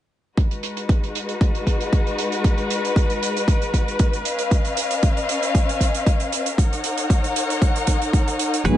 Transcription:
0.37 G#3 D#4 F#4 B4, kick, closed hi-hat
0.51 closed hi-hat
0.63 closed hi-hat
0.77 closed hi-hat
0.89 kick, closed hi-hat
1.04 closed hi-hat
1.15 closed hi-hat
1.29 closed hi-hat
1.41 kick, closed hi-hat
1.55 closed hi-hat
1.67 kick, closed hi-hat
1.81 closed hi-hat
1.93 kick, closed hi-hat
2.07 closed hi-hat
2.18 closed hi-hat
2.32 closed hi-hat
2.44 kick, closed hi-hat
2.58 closed hi-hat
2.70 closed hi-hat
2.85 closed hi-hat
2.96 kick, closed hi-hat
3.10 closed hi-hat
3.23 closed hi-hat
3.37 closed hi-hat
3.48 kick, closed hi-hat
3.62 closed hi-hat
3.74 kick, closed hi-hat
3.88 closed hi-hat
3.99 kick, closed hi-hat
4.13 closed hi-hat
4.25 C#4 D#5 F5, closed hi-hat
4.39 closed hi-hat
4.51 kick, closed hi-hat
4.65 closed hi-hat
4.77 closed hi-hat
4.91 closed hi-hat
5.03 kick, closed hi-hat
5.17 closed hi-hat
5.29 closed hi-hat
5.43 closed hi-hat
5.55 kick, closed hi-hat
5.69 closed hi-hat
5.81 kick, closed hi-hat
5.94 closed hi-hat
6.07 kick, closed hi-hat
6.20 closed hi-hat
6.32 closed hi-hat
6.46 closed hi-hat
6.58 D#4 A#4 C#5 F#5, kick, closed hi-hat
6.73 closed hi-hat
6.84 closed hi-hat
6.97 closed hi-hat
7.10 kick, closed hi-hat
7.24 closed hi-hat
7.36 closed hi-hat
7.50 closed hi-hat
7.62 kick, closed hi-hat
7.76 closed hi-hat
7.87 kick, closed hi-hat
8.02 closed hi-hat
8.13 kick, closed hi-hat
8.28 closed hi-hat
8.39 closed hi-hat
8.54 closed hi-hat
8.64 G#1 F#3 G#3 B3 D#4 F#4 G#4 B4, kick, closed hi-hat, high conga

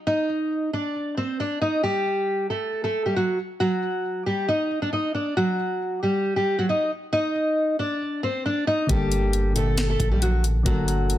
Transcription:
0.07 D#4 D#5
0.73 D4 D5
1.17 C4 C5
1.40 D4 D5
1.61 D#4 D#5
1.83 G3 G4
2.50 A3 A4
2.84 A3 A4
3.06 G3 G4
3.16 F#3 F#4
3.60 F#3 F#4
4.26 G3 G4
4.48 D#4 D#5
4.82 D4 D5
4.93 D#4 D#5
5.15 D4 D5
5.37 F#3 F#4
6.03 G3 G4
6.36 G3 G4
6.59 F#3 F#4
6.69 D#4 D#5
7.13 D#4 D#5
7.79 D4 D5
8.23 C4 C5
8.46 D4 D5
8.67 D#4 D#5
8.87 G1 D3 G3 A#3 G4, kick, closed hi-hat
8.92 A4
9.12 closed hi-hat
9.33 closed hi-hat
9.53 A#2 D3 A3 G4 A4, closed hi-hat
9.58 A4
9.77 snare, closed hi-hat
9.90 A3 A4
10.00 A#1, kick, closed hi-hat
10.11 G3 G4
10.22 F#3 F#4, closed hi-hat
10.44 A1, closed hi-hat
10.55 A#1
10.63 G1 D3 F#3 A#3 F#4 A#4, kick, closed hi-hat
10.69 A4
10.88 closed hi-hat
11.10 closed hi-hat

